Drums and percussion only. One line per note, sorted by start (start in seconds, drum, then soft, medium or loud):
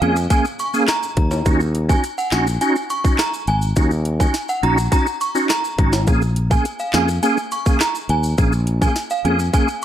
0.02 closed hi-hat soft
0.16 shaker medium
0.30 kick medium
0.30 closed hi-hat medium
0.30 shaker medium
0.45 shaker soft
0.59 closed hi-hat medium
0.59 shaker medium
0.74 shaker medium
0.88 cross-stick loud
0.88 snare loud
0.88 clap medium
0.88 closed hi-hat medium
0.88 shaker medium
1.03 shaker medium
1.17 kick loud
1.17 closed hi-hat medium
1.31 high timbale medium
1.31 shaker medium
1.46 kick loud
1.46 closed hi-hat medium
1.46 shaker medium
1.60 shaker soft
1.75 closed hi-hat medium
1.89 kick loud
1.89 shaker medium
2.04 closed hi-hat medium
2.04 shaker medium
2.18 shaker medium
2.31 snare loud
2.31 clap loud
2.31 closed hi-hat medium
2.47 shaker medium
2.61 closed hi-hat medium
2.61 shaker medium
2.76 shaker soft
2.90 closed hi-hat medium
2.90 shaker medium
3.05 kick medium
3.05 shaker medium
3.18 cross-stick loud
3.18 snare loud
3.18 clap medium
3.18 closed hi-hat medium
3.18 shaker medium
3.34 shaker medium
3.47 closed hi-hat medium
3.62 shaker medium
3.76 kick loud
3.76 closed hi-hat medium
3.76 shaker medium
3.91 shaker soft
4.05 closed hi-hat medium
4.20 kick medium
4.20 shaker medium
4.34 snare medium
4.34 closed hi-hat medium
4.34 shaker medium
4.49 shaker medium
4.63 closed hi-hat medium
4.78 shaker medium
4.92 kick medium
4.92 closed hi-hat medium
4.92 shaker medium
5.07 shaker soft
5.21 closed hi-hat medium
5.21 shaker medium
5.35 shaker medium
5.49 cross-stick loud
5.49 snare loud
5.49 clap medium
5.49 closed hi-hat medium
5.49 shaker medium
5.64 shaker medium
5.78 kick loud
5.78 closed hi-hat medium
5.93 snare medium
5.93 high timbale medium
5.93 shaker medium
6.07 kick loud
6.07 closed hi-hat medium
6.07 shaker medium
6.22 shaker medium
6.36 closed hi-hat medium
6.51 kick loud
6.51 shaker medium
6.65 closed hi-hat medium
6.65 shaker medium
6.79 shaker medium
6.93 snare loud
6.93 clap loud
6.93 closed hi-hat medium
7.08 shaker medium
7.23 closed hi-hat medium
7.23 shaker medium
7.37 shaker soft
7.51 closed hi-hat medium
7.51 shaker medium
7.66 kick medium
7.66 shaker medium
7.80 cross-stick loud
7.80 snare loud
7.80 clap medium
7.80 closed hi-hat medium
7.80 shaker medium
7.95 shaker medium
8.09 closed hi-hat medium
8.23 shaker medium
8.38 kick loud
8.38 closed hi-hat medium
8.38 shaker medium
8.52 shaker soft
8.67 closed hi-hat medium
8.82 kick medium
8.82 shaker medium
8.96 snare medium
8.96 closed hi-hat medium
8.96 shaker medium
9.10 shaker medium
9.25 closed hi-hat medium
9.39 shaker medium
9.54 kick medium
9.54 closed hi-hat medium
9.54 shaker medium
9.68 shaker soft